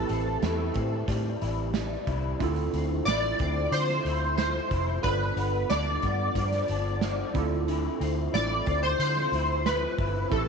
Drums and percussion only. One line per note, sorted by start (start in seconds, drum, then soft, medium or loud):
0.09 closed hi-hat medium
0.42 snare loud
0.42 closed hi-hat medium
0.74 kick loud
0.74 closed hi-hat medium
1.08 kick medium
1.08 closed hi-hat loud
1.42 closed hi-hat medium
1.74 snare loud
1.74 closed hi-hat loud
2.07 kick medium
2.07 closed hi-hat medium
2.40 kick loud
2.40 closed hi-hat medium
2.56 closed hi-hat medium
2.73 closed hi-hat medium
3.08 snare loud
3.08 closed hi-hat loud
3.39 kick medium
3.39 closed hi-hat medium
3.73 closed hi-hat loud
3.89 snare soft
4.06 closed hi-hat medium
4.38 snare loud
4.38 closed hi-hat loud
4.71 kick medium
4.71 closed hi-hat medium
5.04 kick loud
5.04 closed hi-hat medium
5.37 closed hi-hat medium
5.70 snare loud
5.70 closed hi-hat medium
6.02 kick medium
6.02 closed hi-hat medium
6.35 kick medium
6.35 closed hi-hat loud
6.52 snare soft
6.52 closed hi-hat medium
6.68 closed hi-hat medium
7.01 snare loud
7.01 closed hi-hat loud
7.35 kick medium
7.35 closed hi-hat medium
7.68 closed hi-hat medium
8.01 closed hi-hat medium
8.35 snare loud
8.35 closed hi-hat loud
8.66 kick loud
8.66 closed hi-hat medium
9.00 closed hi-hat medium
9.17 snare soft
9.33 closed hi-hat medium
9.66 snare loud
9.66 closed hi-hat loud
9.98 kick medium
9.98 open hi-hat soft
10.32 kick loud
10.32 closed hi-hat medium